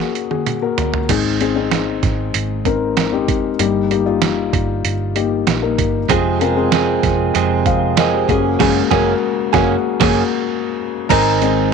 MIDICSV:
0, 0, Header, 1, 5, 480
1, 0, Start_track
1, 0, Key_signature, -4, "major"
1, 0, Tempo, 625586
1, 838, Time_signature, 4, 2, 24, 8
1, 9003, End_track
2, 0, Start_track
2, 0, Title_t, "Upright piano"
2, 0, Program_c, 0, 0
2, 0, Control_c, 0, 64, 127
2, 0, Note_on_c, 0, 42, 60
2, 0, Note_on_c, 0, 49, 57
2, 0, Note_on_c, 0, 58, 65
2, 0, Note_on_c, 0, 66, 65
2, 0, Note_on_c, 0, 68, 78
2, 157, Note_off_c, 0, 58, 0
2, 157, Note_off_c, 0, 66, 0
2, 157, Note_off_c, 0, 68, 0
2, 233, Note_on_c, 0, 58, 58
2, 235, Note_on_c, 0, 66, 60
2, 236, Note_on_c, 0, 68, 71
2, 423, Note_off_c, 0, 58, 0
2, 424, Note_off_c, 0, 66, 0
2, 424, Note_off_c, 0, 68, 0
2, 476, Note_on_c, 0, 58, 58
2, 477, Note_on_c, 0, 66, 54
2, 478, Note_on_c, 0, 70, 73
2, 566, Note_off_c, 0, 42, 0
2, 566, Note_off_c, 0, 49, 0
2, 758, Note_off_c, 0, 58, 0
2, 758, Note_off_c, 0, 66, 0
2, 759, Note_off_c, 0, 70, 0
2, 841, Note_on_c, 0, 44, 62
2, 841, Note_on_c, 0, 60, 71
2, 841, Note_on_c, 0, 63, 69
2, 842, Note_on_c, 0, 51, 63
2, 843, Note_on_c, 0, 68, 78
2, 847, Control_c, 0, 64, 0
2, 962, Control_c, 0, 64, 127
2, 1027, Note_off_c, 0, 60, 0
2, 1027, Note_off_c, 0, 63, 0
2, 1028, Note_off_c, 0, 68, 0
2, 1078, Note_on_c, 0, 60, 77
2, 1078, Note_on_c, 0, 63, 70
2, 1080, Note_on_c, 0, 68, 85
2, 1172, Note_off_c, 0, 60, 0
2, 1172, Note_off_c, 0, 63, 0
2, 1173, Note_off_c, 0, 68, 0
2, 1194, Note_on_c, 0, 60, 81
2, 1195, Note_on_c, 0, 63, 72
2, 1198, Note_on_c, 0, 68, 78
2, 1529, Note_off_c, 0, 44, 0
2, 1529, Note_off_c, 0, 51, 0
2, 1851, Note_off_c, 0, 60, 0
2, 1852, Note_off_c, 0, 63, 0
2, 1853, Note_off_c, 0, 68, 0
2, 2037, Note_on_c, 0, 60, 73
2, 2039, Note_on_c, 0, 63, 65
2, 2040, Note_on_c, 0, 70, 84
2, 2318, Note_off_c, 0, 60, 0
2, 2319, Note_off_c, 0, 63, 0
2, 2320, Note_off_c, 0, 70, 0
2, 2398, Note_on_c, 0, 60, 64
2, 2398, Note_on_c, 0, 63, 64
2, 2401, Note_on_c, 0, 67, 77
2, 2679, Note_off_c, 0, 60, 0
2, 2679, Note_off_c, 0, 63, 0
2, 2680, Note_off_c, 0, 67, 0
2, 2755, Note_on_c, 0, 58, 68
2, 2757, Note_on_c, 0, 43, 63
2, 2757, Note_on_c, 0, 63, 64
2, 2759, Note_on_c, 0, 55, 69
2, 2759, Note_on_c, 0, 67, 82
2, 2766, Control_c, 0, 64, 0
2, 2912, Control_c, 0, 64, 127
2, 2944, Note_off_c, 0, 58, 0
2, 2945, Note_off_c, 0, 63, 0
2, 2946, Note_off_c, 0, 67, 0
2, 2997, Note_on_c, 0, 58, 75
2, 2999, Note_on_c, 0, 63, 66
2, 3000, Note_on_c, 0, 67, 84
2, 3091, Note_off_c, 0, 58, 0
2, 3092, Note_off_c, 0, 63, 0
2, 3093, Note_off_c, 0, 67, 0
2, 3114, Note_on_c, 0, 58, 75
2, 3114, Note_on_c, 0, 63, 69
2, 3116, Note_on_c, 0, 65, 80
2, 3447, Note_off_c, 0, 43, 0
2, 3448, Note_off_c, 0, 55, 0
2, 3771, Note_off_c, 0, 58, 0
2, 3771, Note_off_c, 0, 63, 0
2, 3772, Note_off_c, 0, 65, 0
2, 3955, Note_on_c, 0, 58, 71
2, 3957, Note_on_c, 0, 67, 77
2, 3958, Note_on_c, 0, 63, 61
2, 4237, Note_off_c, 0, 58, 0
2, 4238, Note_off_c, 0, 67, 0
2, 4239, Note_off_c, 0, 63, 0
2, 4313, Note_on_c, 0, 58, 69
2, 4316, Note_on_c, 0, 63, 62
2, 4316, Note_on_c, 0, 70, 73
2, 4596, Note_off_c, 0, 58, 0
2, 4598, Note_off_c, 0, 63, 0
2, 4598, Note_off_c, 0, 70, 0
2, 4674, Note_on_c, 0, 60, 72
2, 4677, Note_on_c, 0, 48, 61
2, 4677, Note_on_c, 0, 65, 66
2, 4678, Note_on_c, 0, 68, 89
2, 4689, Control_c, 0, 64, 0
2, 4840, Control_c, 0, 64, 127
2, 4863, Note_off_c, 0, 60, 0
2, 4864, Note_off_c, 0, 65, 0
2, 4865, Note_off_c, 0, 68, 0
2, 4919, Note_on_c, 0, 60, 81
2, 4921, Note_on_c, 0, 65, 76
2, 4922, Note_on_c, 0, 70, 89
2, 5012, Note_off_c, 0, 60, 0
2, 5013, Note_off_c, 0, 65, 0
2, 5013, Note_off_c, 0, 70, 0
2, 5037, Note_on_c, 0, 65, 67
2, 5038, Note_on_c, 0, 60, 78
2, 5040, Note_on_c, 0, 68, 94
2, 5367, Note_off_c, 0, 48, 0
2, 5693, Note_off_c, 0, 60, 0
2, 5693, Note_off_c, 0, 65, 0
2, 5694, Note_off_c, 0, 68, 0
2, 5880, Note_on_c, 0, 77, 65
2, 5884, Note_on_c, 0, 72, 45
2, 6107, Note_off_c, 0, 77, 0
2, 6109, Note_off_c, 0, 72, 0
2, 6121, Note_on_c, 0, 75, 64
2, 6126, Note_on_c, 0, 70, 57
2, 6234, Note_off_c, 0, 75, 0
2, 6236, Note_off_c, 0, 70, 0
2, 6242, Note_on_c, 0, 72, 54
2, 6245, Note_on_c, 0, 67, 48
2, 6362, Note_on_c, 0, 56, 60
2, 6363, Note_on_c, 0, 49, 74
2, 6363, Note_on_c, 0, 66, 72
2, 6364, Note_on_c, 0, 68, 97
2, 6366, Control_c, 0, 64, 0
2, 6410, Note_off_c, 0, 56, 0
2, 6411, Note_on_c, 0, 58, 82
2, 6468, Note_off_c, 0, 72, 0
2, 6470, Note_off_c, 0, 67, 0
2, 6514, Control_c, 0, 64, 127
2, 6584, Note_off_c, 0, 49, 0
2, 6587, Note_off_c, 0, 66, 0
2, 6588, Note_off_c, 0, 68, 0
2, 6598, Note_on_c, 0, 56, 93
2, 6599, Note_on_c, 0, 49, 96
2, 6599, Note_on_c, 0, 66, 93
2, 6600, Note_on_c, 0, 68, 94
2, 6625, Note_off_c, 0, 58, 0
2, 6648, Note_on_c, 0, 58, 101
2, 6761, Note_off_c, 0, 49, 0
2, 6761, Note_off_c, 0, 56, 0
2, 6762, Note_off_c, 0, 66, 0
2, 6762, Note_off_c, 0, 68, 0
2, 6790, Note_off_c, 0, 58, 0
2, 6839, Note_on_c, 0, 66, 101
2, 6840, Note_on_c, 0, 58, 104
2, 6841, Note_on_c, 0, 70, 98
2, 7002, Note_off_c, 0, 58, 0
2, 7002, Note_off_c, 0, 66, 0
2, 7003, Note_off_c, 0, 70, 0
2, 7317, Note_on_c, 0, 58, 85
2, 7318, Note_on_c, 0, 66, 87
2, 7318, Note_on_c, 0, 68, 87
2, 7481, Note_off_c, 0, 58, 0
2, 7481, Note_off_c, 0, 66, 0
2, 7481, Note_off_c, 0, 68, 0
2, 7679, Note_on_c, 0, 58, 98
2, 7679, Note_on_c, 0, 66, 93
2, 7680, Note_on_c, 0, 68, 103
2, 7841, Note_off_c, 0, 58, 0
2, 7842, Note_off_c, 0, 66, 0
2, 7842, Note_off_c, 0, 68, 0
2, 8511, Note_on_c, 0, 82, 102
2, 8527, Note_on_c, 0, 70, 82
2, 8528, Control_c, 0, 64, 0
2, 8658, Control_c, 0, 64, 127
2, 8759, Note_on_c, 0, 56, 58
2, 8763, Note_on_c, 0, 60, 55
2, 8768, Note_on_c, 0, 63, 67
2, 8972, Note_off_c, 0, 70, 0
2, 9003, Note_off_c, 0, 56, 0
2, 9003, Note_off_c, 0, 60, 0
2, 9003, Note_off_c, 0, 63, 0
2, 9003, Note_off_c, 0, 82, 0
2, 9003, End_track
3, 0, Start_track
3, 0, Title_t, "Clean electric guitar"
3, 0, Program_c, 1, 27
3, 4671, Note_on_c, 1, 41, 84
3, 4676, Note_on_c, 1, 48, 96
3, 4679, Note_on_c, 1, 53, 90
3, 4683, Note_on_c, 1, 56, 83
3, 4684, Note_on_c, 1, 60, 99
3, 4689, Note_on_c, 1, 68, 96
3, 4902, Note_off_c, 1, 68, 0
3, 4911, Note_on_c, 1, 68, 50
3, 4912, Note_off_c, 1, 60, 0
3, 4914, Note_off_c, 1, 41, 0
3, 4917, Note_off_c, 1, 48, 0
3, 4918, Note_off_c, 1, 53, 0
3, 4920, Note_off_c, 1, 56, 0
3, 4921, Note_on_c, 1, 60, 47
3, 4929, Note_on_c, 1, 56, 49
3, 4936, Note_on_c, 1, 53, 44
3, 5142, Note_off_c, 1, 53, 0
3, 5151, Note_off_c, 1, 56, 0
3, 5151, Note_on_c, 1, 53, 60
3, 5155, Note_off_c, 1, 68, 0
3, 5159, Note_off_c, 1, 60, 0
3, 5160, Note_on_c, 1, 56, 62
3, 5168, Note_on_c, 1, 60, 74
3, 5175, Note_on_c, 1, 68, 67
3, 5631, Note_off_c, 1, 53, 0
3, 5633, Note_on_c, 1, 41, 81
3, 5637, Note_on_c, 1, 48, 85
3, 5638, Note_off_c, 1, 60, 0
3, 5641, Note_off_c, 1, 56, 0
3, 5641, Note_on_c, 1, 53, 80
3, 5644, Note_on_c, 1, 56, 79
3, 5646, Note_off_c, 1, 68, 0
3, 5647, Note_on_c, 1, 60, 85
3, 5649, Note_on_c, 1, 68, 78
3, 6103, Note_off_c, 1, 53, 0
3, 6112, Note_on_c, 1, 53, 67
3, 6115, Note_off_c, 1, 41, 0
3, 6118, Note_off_c, 1, 48, 0
3, 6119, Note_off_c, 1, 56, 0
3, 6122, Note_off_c, 1, 60, 0
3, 6122, Note_on_c, 1, 56, 66
3, 6130, Note_on_c, 1, 60, 68
3, 6134, Note_off_c, 1, 68, 0
3, 6137, Note_on_c, 1, 68, 72
3, 6344, Note_off_c, 1, 68, 0
3, 6353, Note_on_c, 1, 68, 42
3, 6355, Note_off_c, 1, 53, 0
3, 6360, Note_off_c, 1, 56, 0
3, 6363, Note_off_c, 1, 60, 0
3, 6366, Note_on_c, 1, 61, 43
3, 6377, Note_on_c, 1, 58, 41
3, 6591, Note_off_c, 1, 58, 0
3, 6594, Note_on_c, 1, 54, 97
3, 6595, Note_off_c, 1, 68, 0
3, 6597, Note_off_c, 1, 61, 0
3, 6600, Note_on_c, 1, 58, 88
3, 6606, Note_on_c, 1, 61, 93
3, 6612, Note_on_c, 1, 68, 103
3, 6759, Note_off_c, 1, 54, 0
3, 6762, Note_off_c, 1, 58, 0
3, 6766, Note_off_c, 1, 61, 0
3, 6769, Note_off_c, 1, 68, 0
3, 6834, Note_on_c, 1, 68, 95
3, 6846, Note_on_c, 1, 61, 92
3, 6858, Note_on_c, 1, 58, 97
3, 6999, Note_off_c, 1, 68, 0
3, 7006, Note_off_c, 1, 61, 0
3, 7013, Note_off_c, 1, 58, 0
3, 7312, Note_on_c, 1, 68, 82
3, 7326, Note_on_c, 1, 61, 96
3, 7336, Note_on_c, 1, 58, 88
3, 7478, Note_off_c, 1, 68, 0
3, 7486, Note_off_c, 1, 61, 0
3, 7491, Note_off_c, 1, 58, 0
3, 7674, Note_on_c, 1, 54, 88
3, 7682, Note_on_c, 1, 58, 87
3, 7686, Note_on_c, 1, 61, 84
3, 7692, Note_on_c, 1, 68, 83
3, 7839, Note_off_c, 1, 54, 0
3, 7843, Note_off_c, 1, 58, 0
3, 7846, Note_off_c, 1, 61, 0
3, 7849, Note_off_c, 1, 68, 0
3, 8515, Note_on_c, 1, 44, 77
3, 8519, Note_on_c, 1, 51, 89
3, 8524, Note_on_c, 1, 56, 91
3, 8525, Note_on_c, 1, 60, 95
3, 8528, Note_on_c, 1, 63, 86
3, 8532, Note_on_c, 1, 68, 87
3, 8983, Note_off_c, 1, 56, 0
3, 8993, Note_off_c, 1, 60, 0
3, 8996, Note_off_c, 1, 44, 0
3, 9003, Note_off_c, 1, 51, 0
3, 9003, Note_off_c, 1, 63, 0
3, 9003, Note_off_c, 1, 68, 0
3, 9003, End_track
4, 0, Start_track
4, 0, Title_t, "Fingered electric bass"
4, 0, Program_c, 2, 33
4, 838, Note_on_c, 2, 32, 82
4, 1527, Note_off_c, 2, 32, 0
4, 1557, Note_on_c, 2, 32, 76
4, 1781, Note_off_c, 2, 32, 0
4, 1801, Note_on_c, 2, 32, 89
4, 2519, Note_off_c, 2, 32, 0
4, 2519, Note_on_c, 2, 29, 78
4, 2742, Note_off_c, 2, 29, 0
4, 2759, Note_on_c, 2, 31, 94
4, 3448, Note_off_c, 2, 31, 0
4, 3477, Note_on_c, 2, 31, 86
4, 3701, Note_off_c, 2, 31, 0
4, 3719, Note_on_c, 2, 31, 97
4, 4168, Note_off_c, 2, 31, 0
4, 4197, Note_on_c, 2, 34, 81
4, 4421, Note_off_c, 2, 34, 0
4, 4438, Note_on_c, 2, 31, 84
4, 4661, Note_off_c, 2, 31, 0
4, 4677, Note_on_c, 2, 29, 97
4, 5367, Note_off_c, 2, 29, 0
4, 5396, Note_on_c, 2, 29, 87
4, 5620, Note_off_c, 2, 29, 0
4, 5638, Note_on_c, 2, 29, 88
4, 6327, Note_off_c, 2, 29, 0
4, 6359, Note_on_c, 2, 30, 97
4, 6582, Note_off_c, 2, 30, 0
4, 6599, Note_on_c, 2, 30, 94
4, 6762, Note_off_c, 2, 30, 0
4, 6838, Note_on_c, 2, 30, 92
4, 7001, Note_off_c, 2, 30, 0
4, 7318, Note_on_c, 2, 30, 90
4, 7481, Note_off_c, 2, 30, 0
4, 7679, Note_on_c, 2, 30, 87
4, 7842, Note_off_c, 2, 30, 0
4, 8518, Note_on_c, 2, 32, 97
4, 9003, Note_off_c, 2, 32, 0
4, 9003, End_track
5, 0, Start_track
5, 0, Title_t, "Drums"
5, 0, Note_on_c, 9, 38, 46
5, 75, Note_off_c, 9, 38, 0
5, 118, Note_on_c, 9, 42, 55
5, 194, Note_off_c, 9, 42, 0
5, 237, Note_on_c, 9, 48, 54
5, 314, Note_off_c, 9, 48, 0
5, 357, Note_on_c, 9, 42, 59
5, 358, Note_on_c, 9, 47, 65
5, 433, Note_off_c, 9, 42, 0
5, 435, Note_off_c, 9, 47, 0
5, 597, Note_on_c, 9, 43, 75
5, 599, Note_on_c, 9, 42, 58
5, 674, Note_off_c, 9, 43, 0
5, 676, Note_off_c, 9, 42, 0
5, 718, Note_on_c, 9, 43, 68
5, 795, Note_off_c, 9, 43, 0
5, 836, Note_on_c, 9, 49, 85
5, 837, Note_on_c, 9, 36, 101
5, 837, Note_on_c, 9, 42, 94
5, 913, Note_off_c, 9, 42, 0
5, 913, Note_off_c, 9, 49, 0
5, 914, Note_off_c, 9, 36, 0
5, 1078, Note_on_c, 9, 42, 53
5, 1155, Note_off_c, 9, 42, 0
5, 1315, Note_on_c, 9, 38, 87
5, 1316, Note_on_c, 9, 42, 58
5, 1392, Note_off_c, 9, 38, 0
5, 1393, Note_off_c, 9, 42, 0
5, 1556, Note_on_c, 9, 42, 62
5, 1557, Note_on_c, 9, 36, 81
5, 1557, Note_on_c, 9, 38, 33
5, 1633, Note_off_c, 9, 38, 0
5, 1633, Note_off_c, 9, 42, 0
5, 1634, Note_off_c, 9, 36, 0
5, 1797, Note_on_c, 9, 42, 86
5, 1873, Note_off_c, 9, 42, 0
5, 2036, Note_on_c, 9, 36, 71
5, 2036, Note_on_c, 9, 42, 55
5, 2112, Note_off_c, 9, 36, 0
5, 2113, Note_off_c, 9, 42, 0
5, 2277, Note_on_c, 9, 42, 62
5, 2280, Note_on_c, 9, 38, 95
5, 2354, Note_off_c, 9, 42, 0
5, 2357, Note_off_c, 9, 38, 0
5, 2519, Note_on_c, 9, 36, 86
5, 2520, Note_on_c, 9, 42, 61
5, 2596, Note_off_c, 9, 36, 0
5, 2597, Note_off_c, 9, 42, 0
5, 2757, Note_on_c, 9, 42, 93
5, 2834, Note_off_c, 9, 42, 0
5, 3000, Note_on_c, 9, 42, 50
5, 3077, Note_off_c, 9, 42, 0
5, 3235, Note_on_c, 9, 38, 88
5, 3236, Note_on_c, 9, 42, 60
5, 3312, Note_off_c, 9, 38, 0
5, 3313, Note_off_c, 9, 42, 0
5, 3477, Note_on_c, 9, 36, 96
5, 3479, Note_on_c, 9, 42, 77
5, 3554, Note_off_c, 9, 36, 0
5, 3556, Note_off_c, 9, 42, 0
5, 3719, Note_on_c, 9, 42, 98
5, 3795, Note_off_c, 9, 42, 0
5, 3957, Note_on_c, 9, 42, 65
5, 4034, Note_off_c, 9, 42, 0
5, 4196, Note_on_c, 9, 42, 64
5, 4199, Note_on_c, 9, 38, 95
5, 4273, Note_off_c, 9, 42, 0
5, 4276, Note_off_c, 9, 38, 0
5, 4438, Note_on_c, 9, 36, 91
5, 4440, Note_on_c, 9, 42, 69
5, 4514, Note_off_c, 9, 36, 0
5, 4516, Note_off_c, 9, 42, 0
5, 4676, Note_on_c, 9, 42, 94
5, 4677, Note_on_c, 9, 36, 102
5, 4753, Note_off_c, 9, 36, 0
5, 4753, Note_off_c, 9, 42, 0
5, 4919, Note_on_c, 9, 42, 52
5, 4996, Note_off_c, 9, 42, 0
5, 5157, Note_on_c, 9, 38, 92
5, 5157, Note_on_c, 9, 42, 67
5, 5233, Note_off_c, 9, 38, 0
5, 5234, Note_off_c, 9, 42, 0
5, 5397, Note_on_c, 9, 36, 90
5, 5397, Note_on_c, 9, 38, 35
5, 5397, Note_on_c, 9, 42, 70
5, 5473, Note_off_c, 9, 42, 0
5, 5474, Note_off_c, 9, 36, 0
5, 5474, Note_off_c, 9, 38, 0
5, 5638, Note_on_c, 9, 42, 89
5, 5715, Note_off_c, 9, 42, 0
5, 5876, Note_on_c, 9, 36, 84
5, 5876, Note_on_c, 9, 42, 59
5, 5952, Note_off_c, 9, 36, 0
5, 5953, Note_off_c, 9, 42, 0
5, 6115, Note_on_c, 9, 42, 68
5, 6118, Note_on_c, 9, 38, 102
5, 6192, Note_off_c, 9, 42, 0
5, 6195, Note_off_c, 9, 38, 0
5, 6359, Note_on_c, 9, 36, 86
5, 6361, Note_on_c, 9, 42, 61
5, 6436, Note_off_c, 9, 36, 0
5, 6438, Note_off_c, 9, 42, 0
5, 6599, Note_on_c, 9, 36, 97
5, 6599, Note_on_c, 9, 38, 103
5, 6599, Note_on_c, 9, 49, 80
5, 6675, Note_off_c, 9, 36, 0
5, 6676, Note_off_c, 9, 38, 0
5, 6676, Note_off_c, 9, 49, 0
5, 6839, Note_on_c, 9, 36, 78
5, 6840, Note_on_c, 9, 38, 85
5, 6915, Note_off_c, 9, 36, 0
5, 6916, Note_off_c, 9, 38, 0
5, 7319, Note_on_c, 9, 36, 95
5, 7319, Note_on_c, 9, 38, 102
5, 7395, Note_off_c, 9, 36, 0
5, 7396, Note_off_c, 9, 38, 0
5, 7678, Note_on_c, 9, 38, 102
5, 7678, Note_on_c, 9, 49, 75
5, 7679, Note_on_c, 9, 36, 97
5, 7755, Note_off_c, 9, 38, 0
5, 7755, Note_off_c, 9, 49, 0
5, 7756, Note_off_c, 9, 36, 0
5, 8518, Note_on_c, 9, 36, 109
5, 8519, Note_on_c, 9, 42, 89
5, 8519, Note_on_c, 9, 49, 94
5, 8595, Note_off_c, 9, 36, 0
5, 8596, Note_off_c, 9, 42, 0
5, 8596, Note_off_c, 9, 49, 0
5, 8761, Note_on_c, 9, 42, 59
5, 8837, Note_off_c, 9, 42, 0
5, 9003, End_track
0, 0, End_of_file